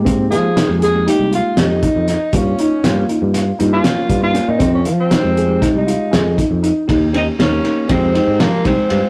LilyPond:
<<
  \new Staff \with { instrumentName = "Grand piano" } { \time 9/8 \key f \minor \tempo 4. = 79 c'8 f'8 ees'8 aes'8 ees'8 f'8 g'8 ees'8 ees'8 | f'8 ees'8 f'8 ees'8 f'8 ees'8 des'8 f'8 des'8 | c'8 f'8 ees'8 aes'8 ees'8 f'8 aes'8 ees'8 ees'8 | ees'8 des'8 ees'8 ees'8 c'8 ees'8 f'8 ees'8 f'8 | }
  \new Staff \with { instrumentName = "Tenor saxophone" } { \time 9/8 \key f \minor r8 aes'4 aes'8 g'8 f'8 ees'4. | des'4. r4 r16 f'4 f'8 ees'16~ | ees'16 des'8 c'4. ees'4. r8. | r8 ees'8 des'4 c'4 bes8 c'4 | }
  \new Staff \with { instrumentName = "Tine electric piano" } { \time 9/8 \key f \minor <aes bes ees' g'>8. r8 <aes bes ees' g'>8 <aes bes ees' g'>4. r4 r16 | <bes des' f'>8. r16 <bes des' f'>4~ <bes des' f'>16 r16 <bes des' f'>4 r16 <bes des' ees'>16 <bes des' f'>8 | r4 r16 <aes ees' g'>8 <aes ees' g'>4. r4 r16 | <bes ees' g'>8 <bes ees' g'>8 <bes ees' g'>4 <aes ees' g'>4. r4 | }
  \new Staff \with { instrumentName = "Clean electric guitar" } { \clef bass \time 9/8 \key f \minor r1 r8 | r1 r8 | r1 r8 | r8 c'8 bes4 aes4 f8 aes4 | }
  \new Staff \with { instrumentName = "Fretless electric bass" } { \clef bass \time 9/8 \key f \minor aes,8 f8. f,4 c,8 r16 f,8. f,8 r16 | g,8 r8 g,8 r16 g,8. g,8 r8 g,8. bes,16 | f,8 f8. f,4 c,8 r16 f,8. f,8 r16 | ees,4 ees,8 r8 f,8. aes,8 r16 c,16 r16 g,16 r16 | }
  \new DrumStaff \with { instrumentName = "Drums" } \drummode { \time 9/8 <hh bd>8 <hh sn>8 <hh sn>8 hh8 hh8 hh8 <hh sn>8 <hh bd>8 <hh sn>8 | <hh bd>8 hh8 <hh sn>8 hh8 <hh sn>8 hh8 <hh sn>8 <hh bd>8 <hh sn>8 | <hh bd>8 hh8 <hh sn>8 hh8 <hh bd sn>8 hh8 <hh sn>8 <hh bd>8 hh8 | <bd cymr>8 cymr8 <cymr sn>8 <cymr sn>8 <bd cymr>8 cymr8 <cymr sn>8 <bd cymr>8 cymr8 | }
>>